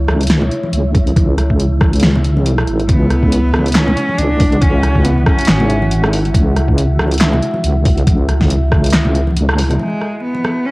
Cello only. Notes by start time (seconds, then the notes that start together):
2.89 B3
3.75 C#4
4.18 D4
4.61 C#4
5.05 B3
5.27 C#4
9.80 G#3
10.23 B3
10.66 C#4